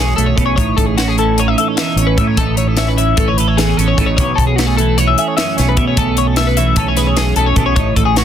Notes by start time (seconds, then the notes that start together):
Already playing: B1 F#2 E3 A3 C#4 G#4
0.16 B1 A3 A4, closed hi-hat
0.26 C#5
0.36 B1 B2 C#4 A4, kick, closed hi-hat
0.46 C#5
0.56 A1 A2 D#4 C#5, kick, closed hi-hat
0.77 A1 A4, kick, closed hi-hat
0.86 G#4
0.97 C#4 F#4, snare, closed hi-hat
1.08 G#4
1.18 E3 A4, closed hi-hat
1.38 D#4 C#5, closed hi-hat
1.48 E5
1.58 A4 E5, closed hi-hat
1.68 C#5
1.77 E2 D#4 E5, snare, closed hi-hat
1.96 A1 C#5, closed hi-hat
2.02 C#4
2.07 B4
2.18 A2 D#4 E5, kick, closed hi-hat
2.27 C#5
2.37 A1 A2 D#4 A4, kick, closed hi-hat
2.57 C#5, closed hi-hat
2.68 A4
2.77 C#4 E5, snare, closed hi-hat
2.88 B4
2.98 E3 E5, closed hi-hat
3.17 A1 C#4 A4, kick, closed hi-hat
3.28 D#4 C#5
3.38 A4 B4, closed hi-hat
3.48 C#5
3.57 E2 C#4 G#4, snare, closed hi-hat
3.69 D#4
3.77 A1 C#4 A4, closed hi-hat
3.88 C#5
3.98 A1 A2 D#4 A4, kick, closed hi-hat
4.06 C#5
4.17 B1 B2 C#4 C#5, kick, closed hi-hat
4.36 B1 A4, kick, closed hi-hat
4.47 G#4
4.56 A3 F#4, snare, closed hi-hat
4.66 G#4
4.77 E3 A4, closed hi-hat
4.98 C#4 C#5, closed hi-hat
5.07 E5
5.18 G#4 E5, closed hi-hat
5.28 C#5
5.37 F#2 C#4 E5, snare, closed hi-hat
5.57 B1 A3 C#5, snare, closed hi-hat
5.69 B4
5.77 B2 C#4 E5, kick, closed hi-hat
5.87 C#5
5.97 B1 B2 C#4 A4, kick, closed hi-hat
6.17 C#5, closed hi-hat
6.27 A4
6.36 A3 E5, snare, closed hi-hat
6.47 B4
6.57 E3 E5, closed hi-hat
6.76 B1 C#4 A4, kick, closed hi-hat
6.88 C#5
6.97 G#4 B4, snare, closed hi-hat
7.07 C#5
7.17 F#2 C#4 G#4, snare, closed hi-hat
7.36 B1 A3 A4, closed hi-hat
7.46 C#5
7.56 B1 B2 C#4 A4, kick, closed hi-hat
7.66 C#5
7.76 A1 A2 D#4 C#5, kick, closed hi-hat
7.96 A1 A4, kick, closed hi-hat
8.05 G#4
8.16 C#4 F#4, snare, closed hi-hat